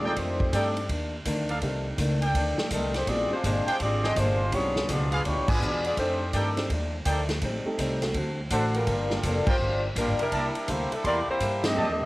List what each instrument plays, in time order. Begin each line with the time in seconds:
Already playing: upright bass D#2
0.04 grand piano A3 C4 D#4 F4 D5, saxophone section C4 F4 G#4 D5, trumpet section D#4 A4 D5 G5
0.16 upright bass F2, steel-string acoustic guitar F2 D#3 A3 D4, saxophone section A3 D#4 G4 C5, kick, ride
0.40 kick
0.52 steel-string acoustic guitar F2 D#3 A3 D4, upright bass G2, grand piano A3 C4 D4 D#4 G4, saxophone section C4 G4 A4 D5, trumpet section D#4 A4 D5 G5, kick, hi-hat pedal, ride
0.77 ride
0.88 upright bass D#2, steel-string acoustic guitar F2 D#3 A3 D4, kick, ride
1.25 upright bass D2, steel-string acoustic guitar F2 D#3 A3 D4, kick, hi-hat pedal, ride
1.49 trumpet section D#4 A4 D5 F5, ride
1.61 upright bass C2, steel-string acoustic guitar F2 D#3 A3 D4, grand piano A3 C4 D4 D#4 G4, kick, ride
1.98 upright bass C#2, steel-string acoustic guitar F2 D#3 A3 D4, kick, hi-hat pedal, ride
2.22 trumpet section A4 D5 G5, ride
2.34 upright bass D2, steel-string acoustic guitar F2 D#3 A3 D4, kick, ride
2.58 snare
2.70 upright bass C2, steel-string acoustic guitar F2 D#3 A3 D4, saxophone section G3 C4 D#4 A4, kick, hi-hat pedal, ride
2.94 saxophone section A3 D#4 G4 C5, snare, ride
3.07 upright bass A#1, steel-string acoustic guitar A#2 G#3 D4 G4, grand piano G3 B3 C#4 E4 F#4, saxophone section C4 F4 G#4 D5, kick, ride
3.30 grand piano G#3 C4 D4 F4 G4, saxophone section G#3 D4 F4 C5, muted upright bass stroke
3.44 upright bass G1, steel-string acoustic guitar A#2 G#3 D4 G4, saxophone section G#3 D4 F4 C5, kick, hi-hat pedal, ride
3.67 trumpet section D4 G#4 C5 G5, muted upright bass stroke, ride
3.80 upright bass G#1, steel-string acoustic guitar A#2 G#3 D4 G4, saxophone section C4 F4 G#4 D5, kick, ride
4.03 saxophone section C4 F4 G#4 D#5, trumpet section D4 G#4 C5 G5, snare
4.16 upright bass G1, steel-string acoustic guitar A#2 G#3 D4 G4, saxophone section G#3 D4 F4 C5, kick, hi-hat pedal, ride
4.52 upright bass B1, steel-string acoustic guitar B2 F3 G#3 D4, grand piano A#3 C4 C#4 E4 G4, saxophone section B3 F4 G#4 C#5, kick, ride
4.76 grand piano G#3 B3 D4 F4 G#4, snare
4.88 upright bass C#2, steel-string acoustic guitar B2 F3 G#3 D4, saxophone section B3 F4 G#4 D5, kick, hi-hat pedal, ride
5.12 trumpet section D4 G#4 B4 F5, ride
5.25 upright bass D2, steel-string acoustic guitar B2 F3 G#3 D4, saxophone section A#3 E4 G4 C#5, kick, ride
5.37 upright bass B1
5.48 upright bass G#1, saxophone section B3 F4 G#4 D5, trumpet section D4 G#4 B4 G#5, kick, crash
5.61 upright bass E2, steel-string acoustic guitar B2 F3 G#3 D4, hi-hat pedal
5.84 saxophone section B3 F4 G#4 D5, ride
5.97 upright bass F2, steel-string acoustic guitar F2 D#3 A3 D4, saxophone section A3 D#4 G4 C5, grand piano C4 D4 D#4 G4 A4, kick, ride
6.33 steel-string acoustic guitar F2 D#3 A3 D4, upright bass G2, saxophone section C4 G4 A4 D5, trumpet section D#4 A4 D5 G5, kick, hi-hat pedal, ride
6.57 grand piano C4 D4 D#4 G4 C5, snare, ride
6.70 upright bass D#2, steel-string acoustic guitar F2 D#3 A3 D4, kick, ride
7.05 upright bass D2, steel-string acoustic guitar F2 D#3 A3 D4, trumpet section D#4 A4 D5 G5, kick, hi-hat pedal, ride
7.29 snare, ride
7.41 upright bass A1, steel-string acoustic guitar A2 G3 C4 D#4, kick, ride
7.65 grand piano A3 C4 D#4 G4 A4, muted upright bass stroke
7.78 upright bass C2, steel-string acoustic guitar A2 G3 C4 D#4, kick, hi-hat pedal, ride
8.02 grand piano A3 C4 D4 F#4 A4, snare, ride
8.14 upright bass D2, steel-string acoustic guitar D3 A3 C4 F#4, kick, ride
8.50 upright bass A1, steel-string acoustic guitar D3 A3 C4 F#4, saxophone section A3 D4 F#4 C5, trumpet section D4 A4 C5 F#5, kick, hi-hat pedal, ride
8.74 saxophone section G3 D4 F4 A#4, ride
8.86 upright bass G1, steel-string acoustic guitar G2 F3 A#3, kick, ride
8.91 steel-string acoustic guitar D4
9.10 grand piano G3 A#3 D4 F4 A4, saxophone section G3 D4 F4 A4, snare
9.23 upright bass F1, steel-string acoustic guitar G2 F3 A#3 D4, kick, hi-hat pedal, ride
9.47 saxophone section A#3 F4 G4 C5, trumpet section F4 A#4 D5 G5, kick, crash
9.59 upright bass G1, steel-string acoustic guitar G2 F3 A#3
9.63 steel-string acoustic guitar D4
9.96 upright bass A#1, steel-string acoustic guitar G2 F3 A#3 D4, saxophone section G3 D4 F4 A#4, kick, hi-hat pedal, ride
10.08 upright bass G1
10.19 saxophone section G3 D4 E4 A#4, ride
10.32 upright bass C2, steel-string acoustic guitar C3 A#3 E4 A4, trumpet section E4 A#4 D5 A5, kick, ride
10.55 muted upright bass stroke, ride
10.68 upright bass D2, steel-string acoustic guitar C3 A#3 E4 A4, grand piano G3 A#3 D4 E4 A4, saxophone section A#3 E4 G4 C5, kick, hi-hat pedal, ride
10.92 saxophone section G3 D4 E4 A4, ride
11.04 upright bass E2, steel-string acoustic guitar C3 A#3 E4 A4, saxophone section A#3 E4 G4 D5, trumpet section E4 A#4 D5 C6, kick, ride
11.28 saxophone section A#3 E4 G4 C5, muted upright bass stroke
11.40 upright bass G2, steel-string acoustic guitar C3 A#3 E4 A4, kick, hi-hat pedal, ride
11.63 grand piano G3 C4 D4 D#4 G4, saxophone section C4 G4 A4 D#5, snare, ride
11.76 steel-string acoustic guitar F2 D#3 A3 D4, upright bass F2, trumpet section G4 D5 D#5 A5
11.89 upright bass D#2
12.00 upright bass C2, saxophone section C4 G4 A4 D#5